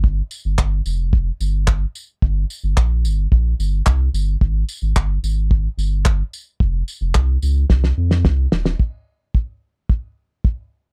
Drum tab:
TB |--x---x---x---x-|--x---x---x---x-|--x---x---x---x-|--x---x---------|
CP |----x-------x---|----x-------x---|----x-------x---|----x-----------|
SD |----------------|----------------|----------------|--------oo-oo-oo|
BD |o---o---o---o---|o---o---o---o---|o---o---o---o---|o---o---o---o---|

TB |----------------|
CP |----------------|
SD |----------------|
BD |o---o---o---o---|